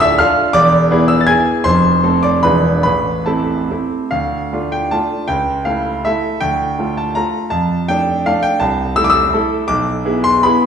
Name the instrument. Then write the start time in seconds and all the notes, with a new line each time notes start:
grand piano
Already playing: D1 D2 D4 F4 A4 D5 D6
0.00 E5 E6
0.19 D4 F4 A4 F5 F6
0.53 E1 E2 D5 D6
0.91 B3 E4 G#4
1.08 E6
1.21 A6
1.27 B3 E4 G#4 G#5 G#6
1.64 F1 F2 C5 C6
2.03 A3 C4 A4
2.23 D5 D6
2.43 E1 E2 G#3 D4 F4 B4 B5
2.83 A1 A2 B4 B5
3.26 A3 C4 E4 A4 A5
3.70 A3 C4 E4
4.11 D2 F5
4.53 A3 D4 F4
4.72 G5
4.91 A3 D4 F4 A5
5.28 C#2 G5
5.65 A3 E4 A4 F5
6.05 A3 E4 A4 E5
6.40 D2 G5
6.79 A3 F4 A4
6.97 A5
7.15 A3 F4 A4 A#5
7.50 F2 A5
7.88 A3 D4 A4 G5
8.26 A3 D4 A4 F5
8.43 G5
8.60 C2 A5
8.96 A3 E4 A4 E6
9.04 D6
9.10 E6
9.34 A3 E4 A4
9.68 B1 D6
10.05 B3 E4 G#4
10.24 C6
10.43 B3 E4 G#4 B5